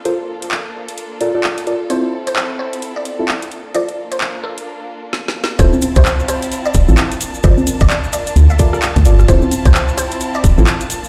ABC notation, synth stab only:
X:1
M:4/4
L:1/16
Q:"Swing 16ths" 1/4=130
K:Dm
V:1 name="Synth stab"
[FABc] z8 z [FABd] [FABd] z2 [FABd] z | [CEFA] z8 z2 [CEFA] z4 | [FABc] z12 z3 | [CEFA] z8 z2 [CEFA] z4 |
[FABc] z8 z [FABd] [FABd] z2 [FABd] z | [CEFA] z8 z2 [CEFA] z4 |]